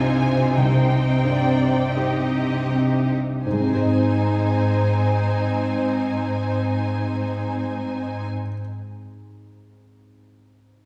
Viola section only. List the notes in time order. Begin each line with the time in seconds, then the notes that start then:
Already playing: C4 D#4
0.55 C4 D#4
1.24 D5
1.94 C4 D#4
3.44 C4 D#4